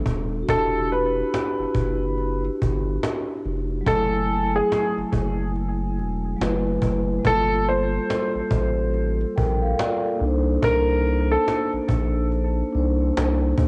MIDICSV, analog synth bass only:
0, 0, Header, 1, 2, 480
1, 0, Start_track
1, 0, Tempo, 845070
1, 277, Time_signature, 4, 2, 24, 8
1, 7770, End_track
2, 0, Start_track
2, 0, Title_t, "Analog synth bass"
2, 0, Program_c, 0, 38
2, 34, Note_on_c, 0, 27, 94
2, 244, Note_off_c, 0, 27, 0
2, 280, Note_on_c, 0, 28, 95
2, 697, Note_off_c, 0, 28, 0
2, 904, Note_on_c, 0, 30, 49
2, 942, Note_off_c, 0, 30, 0
2, 995, Note_on_c, 0, 30, 95
2, 1414, Note_off_c, 0, 30, 0
2, 1489, Note_on_c, 0, 31, 91
2, 1693, Note_off_c, 0, 31, 0
2, 1962, Note_on_c, 0, 29, 92
2, 2169, Note_off_c, 0, 29, 0
2, 2199, Note_on_c, 0, 30, 100
2, 2616, Note_off_c, 0, 30, 0
2, 2826, Note_on_c, 0, 30, 51
2, 2864, Note_off_c, 0, 30, 0
2, 2914, Note_on_c, 0, 30, 85
2, 3398, Note_on_c, 0, 28, 101
2, 3407, Note_off_c, 0, 30, 0
2, 3607, Note_off_c, 0, 28, 0
2, 3641, Note_on_c, 0, 30, 90
2, 3848, Note_off_c, 0, 30, 0
2, 3873, Note_on_c, 0, 30, 98
2, 4084, Note_off_c, 0, 30, 0
2, 4119, Note_on_c, 0, 31, 104
2, 4536, Note_off_c, 0, 31, 0
2, 4743, Note_on_c, 0, 33, 48
2, 4781, Note_off_c, 0, 33, 0
2, 4835, Note_on_c, 0, 33, 104
2, 5254, Note_off_c, 0, 33, 0
2, 5330, Note_on_c, 0, 34, 88
2, 5533, Note_off_c, 0, 34, 0
2, 5801, Note_on_c, 0, 36, 102
2, 6008, Note_off_c, 0, 36, 0
2, 6037, Note_on_c, 0, 36, 106
2, 6455, Note_off_c, 0, 36, 0
2, 6665, Note_on_c, 0, 34, 48
2, 6702, Note_off_c, 0, 34, 0
2, 6754, Note_on_c, 0, 34, 97
2, 7173, Note_off_c, 0, 34, 0
2, 7243, Note_on_c, 0, 36, 104
2, 7449, Note_off_c, 0, 36, 0
2, 7482, Note_on_c, 0, 36, 91
2, 7689, Note_off_c, 0, 36, 0
2, 7714, Note_on_c, 0, 39, 93
2, 7770, Note_off_c, 0, 39, 0
2, 7770, End_track
0, 0, End_of_file